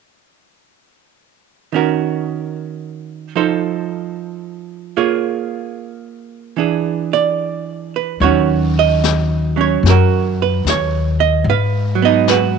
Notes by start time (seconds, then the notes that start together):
1.72 D#3 C#4 F#4 A#4
3.36 F3 D#4 A4 C5
4.97 A#3 F4 G#4 C#5
6.57 E3 D4 G#4
7.13 D5
7.96 B4
8.20 D#2 D#3 F#3 F#4 C#5, brush sweep
8.24 C#4
8.79 D#5
9.04 snare, hi-hat pedal
9.56 F#3 C#4
9.61 C#5
9.83 F#2, brush sweep, snare
9.89 F#4 A#4
10.42 B4
10.65 D#2, snare, hi-hat pedal
10.70 C#5
11.20 D#5
11.44 G#2, brush sweep
11.50 B4 F5
11.95 F#3
12.02 B3 D#4 D#5
12.28 F#4 B4, snare, hi-hat pedal